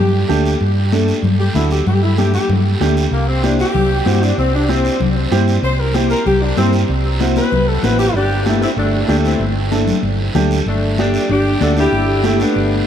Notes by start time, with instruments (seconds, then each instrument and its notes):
Already playing: fingered electric bass G2, saxophone section G4
0.28 fingered electric bass D2, upright piano A3 D4 G4, high conga, short guiro
0.46 short guiro
0.61 fingered electric bass G2, long guiro
0.92 upright piano A3 D4 A4, high conga, short guiro
1.08 short guiro
1.23 fingered electric bass G2, low conga, long guiro
1.39 saxophone section G4
1.54 fingered electric bass D2, upright piano A3 D4 F#4, saxophone section E4, high conga, short guiro
1.71 saxophone section G4, short guiro
1.86 fingered electric bass G2, saxophone section G4, low conga, long guiro
2.03 saxophone section E4
2.17 upright piano A3 D4 G4, saxophone section G4, high conga, short guiro
2.34 saxophone section G4, high conga, short guiro
2.49 fingered electric bass G2, low conga, long guiro
2.80 fingered electric bass D2, upright piano A3 D4 G4, high conga, short guiro
2.97 short guiro
3.11 fingered electric bass C2, saxophone section A#3, long guiro
3.28 saxophone section C4
3.43 upright piano C4 E4 G4, saxophone section D4, high conga, short guiro
3.59 saxophone section G4, short guiro
3.74 fingered electric bass C2, low conga, long guiro
4.05 fingered electric bass G2, upright piano C4 E4 F#4, high conga, short guiro
4.22 saxophone section D4, short guiro
4.38 fingered electric bass C2, saxophone section C4, long guiro
4.54 saxophone section D4
4.68 upright piano C4 E4 G4, saxophone section C4, high conga, short guiro
4.85 short guiro
5.00 fingered electric bass C2, low conga, long guiro
5.31 fingered electric bass G2, upright piano C4 E4 G4, high conga, short guiro
5.48 short guiro
5.62 fingered electric bass C2, saxophone section C5, long guiro
5.80 saxophone section A#4
5.94 upright piano C4 E4 G4, saxophone section G4, high conga, short guiro
6.10 saxophone section A#4, short guiro
6.26 fingered electric bass C2, saxophone section G4, low conga, long guiro
6.43 saxophone section D4
6.57 fingered electric bass G2, upright piano C4 E4 G4, saxophone section C4, high conga, short guiro
6.73 short guiro
6.88 fingered electric bass C2, long guiro
7.20 upright piano C4 E4 F#4, high conga, short guiro
7.36 saxophone section B4, high conga, short guiro
7.52 fingered electric bass C2, low conga, long guiro
7.68 saxophone section A4
7.83 fingered electric bass A1, upright piano C4 E4 F#4, saxophone section B4, high conga, short guiro
7.99 saxophone section G4, short guiro
8.14 fingered electric bass G1, saxophone section D4 G4, clean electric guitar D4, high conga, long guiro
8.45 upright piano A3 D4 G4, clean electric guitar A3, saxophone section A3 E4, high conga, short guiro
8.61 clean electric guitar B3, saxophone section C4 E4, short guiro
8.76 fingered electric bass G1, clean electric guitar A3, saxophone section A3 D4, high conga, long guiro
9.08 fingered electric bass D2, upright piano A3 D4 G4, clean electric guitar A3, saxophone section A3 D4, high conga, short guiro
9.24 clean electric guitar A3, saxophone section C4 E4, short guiro
9.39 fingered electric bass G1, high conga, long guiro
9.71 upright piano A3 D4 A4, high conga, short guiro
9.87 low conga, short guiro
10.03 fingered electric bass G1, high conga, long guiro
10.34 fingered electric bass D2, upright piano A3 D4 G4, high conga, low conga, short guiro
10.51 short guiro
10.66 fingered electric bass G1, saxophone section A3 D4, clean electric guitar A3, high conga, long guiro
10.98 upright piano A3 D4 G4, saxophone section D4 G4, clean electric guitar D4, high conga, short guiro
11.14 short guiro
11.29 fingered electric bass G1, clean electric guitar D4, saxophone section D4 G4, high conga, long guiro
11.61 fingered electric bass D2, upright piano A3 D4 F#4, clean electric guitar D4, saxophone section D4 A4, high conga, short guiro
11.77 clean electric guitar D4, saxophone section E4 G4, short guiro
11.92 fingered electric bass G1, high conga, long guiro
12.23 upright piano A3 D4 G4, clean electric guitar A3, saxophone section A3 E4, high conga, short guiro
12.40 clean electric guitar A3, saxophone section B3 D4, short guiro
12.55 fingered electric bass G1, high conga, long guiro